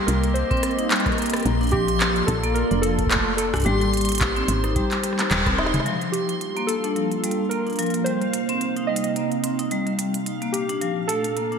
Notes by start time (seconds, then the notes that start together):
Already playing: A#3 C4 G4 D#5 C6
0.07 C2 G3 A#4, closed hi-hat
0.24 closed hi-hat
0.34 C5, closed hi-hat
0.51 C4, kick, closed hi-hat
0.57 closed hi-hat
0.63 cross-stick, closed hi-hat
0.71 closed hi-hat
0.78 D#4, closed hi-hat
0.90 G3, clap, closed hi-hat
0.96 closed hi-hat
1.00 closed hi-hat
1.06 kick, cross-stick, closed hi-hat
1.09 cross-stick
1.12 cross-stick, closed hi-hat
1.15 A#3, cross-stick
1.18 cross-stick, closed hi-hat
1.22 cross-stick, closed hi-hat
1.26 cross-stick, closed hi-hat
1.30 cross-stick, closed hi-hat
1.33 cross-stick, closed hi-hat
1.36 closed hi-hat
1.40 closed hi-hat
1.43 A4, closed hi-hat
1.46 A#1 A#3 F4 D5, closed hi-hat
1.61 D4, closed hi-hat
1.63 closed hi-hat
1.67 closed hi-hat
1.69 closed hi-hat
1.71 F3 G4, kick, closed hi-hat
1.88 F3, closed hi-hat
2.01 F3, clap, closed hi-hat
2.16 closed hi-hat
2.27 A#1 A4, kick, cross-stick, closed hi-hat
2.44 A#3, closed hi-hat
2.54 A#4, closed hi-hat
2.71 F1 D4, closed hi-hat
2.82 F3 A4, closed hi-hat
2.99 kick, closed hi-hat
3.07 kick
3.11 A3, cross-stick, clap, closed hi-hat
3.16 kick
3.37 A#3 A4, closed hi-hat
3.54 D4, kick, cross-stick, closed hi-hat
3.56 kick, closed hi-hat
3.60 kick, closed hi-hat
3.62 kick, closed hi-hat
3.64 G#1 G3 D#4 G4 C5, closed hi-hat
3.66 closed hi-hat
3.81 G3, closed hi-hat
3.93 G3, closed hi-hat
3.97 closed hi-hat
4.01 closed hi-hat
4.05 closed hi-hat
4.09 closed hi-hat
4.12 closed hi-hat
4.15 closed hi-hat
4.18 kick, clap, closed hi-hat
4.36 C4, closed hi-hat
4.48 G#1, closed hi-hat
4.64 D#4, cross-stick, closed hi-hat
4.76 G3, kick, closed hi-hat
4.91 clap, closed hi-hat
5.03 G3, cross-stick, closed hi-hat
5.13 cross-stick
5.19 cross-stick, clap, closed hi-hat
5.31 D#1 G3, clap, closed hi-hat
5.46 C4, kick, cross-stick, closed hi-hat
5.58 D#4, snare
5.66 snare
5.74 G#3, closed hi-hat, mid tom
5.80 snare
5.86 F3 G3 A#3 D4 F4 F5, closed hi-hat
6.01 F3, closed hi-hat
6.12 F3 G4, closed hi-hat
6.29 closed hi-hat
6.41 closed hi-hat
6.56 A#3, closed hi-hat
6.67 A4, closed hi-hat
6.84 D4, closed hi-hat
6.96 F3, closed hi-hat
7.11 closed hi-hat
7.24 G3, closed hi-hat
7.31 closed hi-hat
7.49 A#3 A#4, closed hi-hat
7.67 D4, closed hi-hat
7.70 closed hi-hat
7.73 closed hi-hat
7.76 F3, closed hi-hat
7.79 closed hi-hat
7.83 closed hi-hat
7.86 closed hi-hat
7.90 closed hi-hat
7.94 F3, closed hi-hat
8.04 C3 G3 C4 D#4 C5, closed hi-hat
8.22 closed hi-hat
8.34 closed hi-hat
8.49 C4, closed hi-hat
8.61 closed hi-hat
8.76 D#4, closed hi-hat
8.87 G3 D#5
8.96 closed hi-hat
9.04 closed hi-hat
9.16 A#3, closed hi-hat
9.32 closed hi-hat
9.44 C4, closed hi-hat
9.59 D#4, closed hi-hat
9.71 G3, closed hi-hat
9.87 G3, closed hi-hat
9.99 G3, closed hi-hat
10.14 closed hi-hat
10.26 A#2 D4 A5, closed hi-hat
10.42 A#3, closed hi-hat
10.52 G4, closed hi-hat
10.69 D4, closed hi-hat
10.81 F3, closed hi-hat
11.08 A3 A4, closed hi-hat
11.24 closed hi-hat
11.36 A#3, closed hi-hat
11.52 D4, closed hi-hat